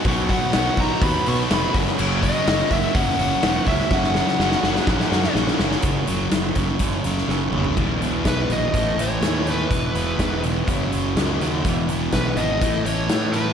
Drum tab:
CC |----------------|x---------------|----------------|----------------|
HH |o-o-o-o-o-o-o-o-|--o-o-o-o-o-o-o-|----------------|x-x-x-x-x-x-----|
SD |----o-------o--o|----o-------o--o|oooooooooooooooo|----oo-----oo---|
T2 |----------------|----------------|----------------|--------------o-|
FT |----------------|----------------|----------------|---------------o|
BD |o-o---o-o-----o-|--o---o-o-----o-|o-------o-------|o-----o-o-------|

CC |x---------------|----------------|----------------|
HH |--x-x-x-x-x-x-x-|x-x-x-x-x-x-x-x-|x-x-x-x-x-x-x-x-|
SD |----o-o-----o---|----o-------o-o-|----o-------o---|
T2 |----------------|----------------|----------------|
FT |----------------|----------------|----------------|
BD |o---o---o-------|o---o---o-------|o---o---o-------|